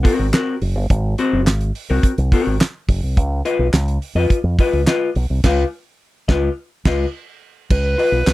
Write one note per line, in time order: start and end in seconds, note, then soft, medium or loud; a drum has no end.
0.03 0.26 C4 medium
0.03 0.26 F#4 medium
0.03 0.26 A#4 medium
0.03 kick loud
0.03 open hi-hat medium
0.19 0.31 G#1 medium
0.33 0.55 C4 medium
0.33 0.55 F#4 medium
0.33 0.55 A#4 medium
0.33 snare loud
0.33 clap medium
0.33 closed hi-hat medium
0.61 0.75 F#1 medium
0.61 open hi-hat medium
0.75 0.87 G1 medium
0.90 1.14 G#1 loud
0.90 kick loud
0.90 closed hi-hat medium
1.18 1.40 C4 loud
1.18 1.40 F#4 loud
1.18 1.41 C5 loud
1.18 closed hi-hat medium
1.33 1.47 F#1 medium
1.47 1.70 G#1 loud
1.47 snare loud
1.47 clap medium
1.47 closed hi-hat loud
1.61 closed hi-hat soft
1.75 open hi-hat medium
1.90 2.02 C2 medium
1.90 2.11 C4 medium
1.90 2.11 F#4 medium
1.90 2.11 A#4 medium
2.03 kick medium
2.03 closed hi-hat medium
2.18 2.30 C2 loud
2.18 closed hi-hat soft
2.32 2.54 C4 medium
2.32 2.54 F#4 medium
2.32 2.54 A#4 medium
2.32 kick medium
2.32 open hi-hat medium
2.47 2.58 G#1 medium
2.61 snare loud
2.61 clap loud
2.61 closed hi-hat loud
2.88 3.00 F#1 medium
2.88 kick loud
2.88 open hi-hat medium
3.03 3.17 C2 medium
3.17 3.41 C#2 loud
3.17 kick loud
3.17 closed hi-hat medium
3.45 3.67 F4 medium
3.45 3.67 B4 medium
3.45 3.67 D#5 medium
3.45 closed hi-hat medium
3.59 3.71 B1 medium
3.73 3.97 C#2 loud
3.73 snare loud
3.73 clap medium
3.73 closed hi-hat loud
3.88 closed hi-hat soft
4.02 open hi-hat medium
4.15 4.27 F2 medium
4.15 4.38 F4 medium
4.15 4.38 B4 medium
4.15 4.38 D#5 medium
4.30 muted fingered electric bass stroke medium
4.30 kick loud
4.30 closed hi-hat medium
4.44 4.56 F2 medium
4.59 4.81 F4 medium
4.59 4.81 B4 medium
4.59 4.81 D#5 medium
4.59 kick loud
4.59 open hi-hat medium
4.73 4.85 C#2 medium
4.87 5.09 F4 medium
4.87 5.09 B4 medium
4.87 5.09 D#5 loud
4.87 snare loud
4.87 clap loud
4.87 closed hi-hat medium
5.15 5.27 B1 medium
5.15 open hi-hat medium
5.30 5.42 C2 medium
5.44 5.63 C#2 loud
5.44 5.63 F4 loud
5.44 5.64 B4 loud
5.44 5.64 F5 loud
5.44 kick loud
5.44 snare loud
5.44 crash medium
6.28 6.48 C#2 loud
6.28 6.48 F4 medium
6.28 6.48 B4 medium
6.28 6.48 D#5 loud
6.28 kick loud
6.28 snare loud
6.85 7.05 C#2 loud
6.85 7.05 F4 loud
6.85 7.05 B4 loud
6.85 7.06 D#5 loud
6.85 kick loud
6.85 snare loud
6.85 crash medium
7.70 7.94 C#2 loud
7.70 8.33 B4 loud
7.70 kick loud
7.70 crash medium
7.98 8.20 F4 medium
7.98 8.21 B4 medium
7.98 8.21 D#5 medium
7.98 open hi-hat medium
8.12 8.24 B1 medium
8.27 8.33 C#2 medium
8.27 snare loud
8.27 clap medium
8.27 closed hi-hat loud